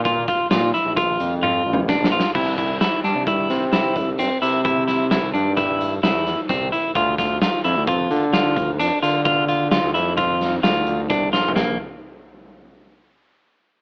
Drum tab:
CC |------------------------------|x-----------------------------|------------------------------|------------------------------|
HH |x--x--x--x--x--x--------------|---x--x--x--x--x--x--x--x--x--|x--x--x--x--x--x--x--x--x--x--|x--x--x--x--x--x--x--x--x--x--|
SD |------o-----------------o-o-o-|------o--o-----o--o-----------|---o--o-----o-----o--o--o-----|---o--o-----------o-----------|
T1 |------------------o-----------|------------------------------|------------------------------|------------------------------|
T2 |----------------------o-------|------------------------------|------------------------------|------------------------------|
FT |------------------------------|------------------------------|------------------------------|------------------------------|
BD |o--o--------o-----------o-----|o--o--------o--------o--------|o-----------o-----------o-----|o--o--------o--------o--------|

CC |------------------------------|------------------------------|
HH |x--x--x--x--x--x--x--x--x-----|------------------------------|
SD |------o--------o--o-----o--o--|o-----------------------------|
T1 |------------------------------|------------------------------|
T2 |------------------------------|------------------------------|
FT |-----------------------------o|o-----------------------------|
BD |o-----------o-----------o-----|------------------------------|